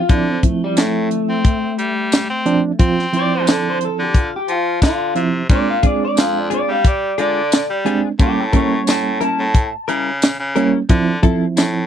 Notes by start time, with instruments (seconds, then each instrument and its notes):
Already playing: clean electric guitar F4
0.09 baritone saxophone D3, reed electric piano F3 C4 E4, clean electric guitar D4, kick, closed hi-hat
0.30 clean electric guitar C4
0.43 reed electric piano F3 C4 E4, clean electric guitar A3, kick, closed hi-hat
0.64 clean electric guitar G3
0.77 baritone saxophone A2, clean electric guitar A3, snare, closed hi-hat, tambourine
1.11 baritone saxophone D3, closed hi-hat
1.29 baritone saxophone C4
1.45 kick, closed hi-hat
1.78 baritone saxophone G3, closed hi-hat
2.12 snare, closed hi-hat, tambourine
2.30 baritone saxophone C4
2.45 reed electric piano F3 C4 D4, closed hi-hat
2.79 reed electric piano F3 C4 F4, baritone saxophone C4, kick, closed hi-hat
2.99 snare
3.13 reed electric piano F3 C4 E4, closed hi-hat
3.17 clean electric guitar D5
3.35 clean electric guitar C5
3.47 baritone saxophone D3, snare, closed hi-hat, tambourine
3.51 clean electric guitar A4
3.70 clean electric guitar C5
3.81 baritone saxophone D3, closed hi-hat
3.85 clean electric guitar A4
3.99 baritone saxophone D3
4.03 clean electric guitar G4
4.14 clean electric guitar F4, kick, closed hi-hat
4.36 clean electric guitar G4
4.48 baritone saxophone F3, clean electric guitar F4, closed hi-hat
4.82 baritone saxophone D3, clean electric guitar F4, kick, snare, closed hi-hat, tambourine
5.15 baritone saxophone C3, reed electric piano F3 C4 E4, closed hi-hat
5.50 baritone saxophone A#2, reed electric piano G#3 C4 D4, clean electric guitar D5, kick, closed hi-hat
5.71 clean electric guitar F5
5.83 reed electric piano G#3 C4 D4, clean electric guitar G#3 D4 F4 G#4 D5, kick, closed hi-hat
6.05 clean electric guitar D5
6.17 baritone saxophone F2, clean electric guitar F5, snare, closed hi-hat, tambourine
6.39 clean electric guitar D5
6.50 baritone saxophone A#2, clean electric guitar G#3 D4 F4 G#4, closed hi-hat
6.54 clean electric guitar D5
6.69 baritone saxophone G3, clean electric guitar F5
6.85 clean electric guitar D5, kick, closed hi-hat
7.18 baritone saxophone D3, clean electric guitar G#3 D4 F4 G#4 D5, closed hi-hat
7.52 snare, closed hi-hat, tambourine
7.70 baritone saxophone G3
7.85 reed electric piano G#3 C4 D4, clean electric guitar G#3 D4 F4 G#4, closed hi-hat
8.19 baritone saxophone A2, reed electric piano G3 A#3 C#4, clean electric guitar G4, kick, closed hi-hat
8.40 clean electric guitar A4
8.53 reed electric piano G3 A#3 C#4, clean electric guitar G3 C#4 E4 A#4 C#5, kick, closed hi-hat
8.87 baritone saxophone A2, clean electric guitar A5, snare, closed hi-hat, tambourine
9.21 baritone saxophone A2, clean electric guitar G3 C#4 E4 A#4 A5, closed hi-hat
9.39 baritone saxophone A2
9.55 kick, closed hi-hat
9.88 baritone saxophone C#3, clean electric guitar G3 C#4 E4 A#4, closed hi-hat
10.22 snare, closed hi-hat, tambourine
10.40 baritone saxophone C#3
10.56 reed electric piano G3 A#3 C#4, clean electric guitar G3 C#4 E4 A#4, closed hi-hat
10.89 baritone saxophone D3, reed electric piano F3 C4 E4, kick, closed hi-hat
11.23 reed electric piano F3 C4 E4, clean electric guitar F3 C4 E4 A4, kick, closed hi-hat
11.57 baritone saxophone A2, snare, closed hi-hat, tambourine